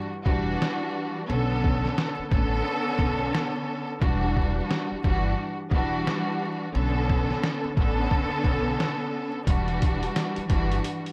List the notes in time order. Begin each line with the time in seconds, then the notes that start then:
0.26 E1 E3 G3 D4 F#4, kick
0.62 snare
1.27 B1 D3 B3 C#4 A4
1.64 kick
1.85 snare
1.98 snare
2.19 muted upright bass stroke
2.31 A1 D3 B3 C#4 A4, kick
2.99 B1, kick
3.35 snare
4.01 E1 E3 G3 D4 F#4, kick
4.37 kick
4.71 snare
4.92 muted upright bass stroke
5.04 G1 E3 G3 D4 F#4, kick
5.71 E1 E3 G3 D4 F#4, kick
6.07 snare
6.73 B1 D3 B3 C#4 A4
7.10 kick
7.31 snare
7.44 snare
7.65 muted upright bass stroke
7.77 A1 D3 B3 C#4 A4, kick
8.11 kick
8.44 B1, kick
8.80 snare
9.47 E1 E3 G3 D4 F#4, kick, closed hi-hat
9.68 closed hi-hat
9.82 kick, closed hi-hat
10.03 closed hi-hat
10.16 snare, closed hi-hat
10.36 muted upright bass stroke, closed hi-hat
10.49 G1 E3 G3 D4 F#4, kick, closed hi-hat
10.72 closed hi-hat
10.84 closed hi-hat
11.06 closed hi-hat